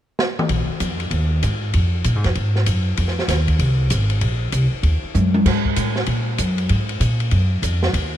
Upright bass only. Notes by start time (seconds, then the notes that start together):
0.49 A#1
0.68 muted upright bass stroke
0.80 F2
1.11 D#2
1.43 G#2
1.74 F2
2.05 A#2
2.15 G#2
2.25 F2
2.36 G#2
2.66 F#2
2.98 F2
3.28 D#2
3.59 C2
3.91 G#1
4.21 A#1
4.53 C2
4.72 muted upright bass stroke
4.83 D#2
5.03 muted upright bass stroke
5.15 F#2
5.46 G#2
5.76 A2
6.07 A#2
6.39 F#2
6.70 G#2
7.00 A#2
7.32 F#2
7.62 F2
7.93 D#2